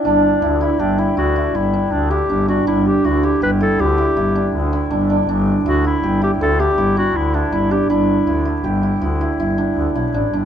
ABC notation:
X:1
M:7/4
L:1/8
Q:1/4=161
K:Clyd
V:1 name="Clarinet"
D3 E D E F2 E2 D G2 F | E G F G B A G4 z4 | z2 F E2 G A G2 F E D E G | E4 z8 z2 |]
V:2 name="Hammered dulcimer"
D2 E E G E E E E D2 E D D | D2 E E G E E E E D2 E D D | D2 E E G E E E E D2 E D D | D2 E E G E E E E D2 E D D |]
V:3 name="Double bass" clef=bass
G,,,2 D,,2 G,,,2 D,,2 G,,,2 D,,2 G,,,2 | G,,,2 D,,2 G,,,2 D,,2 G,,,2 D,,2 G,,,2 | G,,,2 D,,2 G,,,2 D,,2 G,,,2 D,,2 G,,,2 | G,,,2 D,,2 G,,,2 D,,2 G,,,2 D,, B,,, A,,, G,,, |]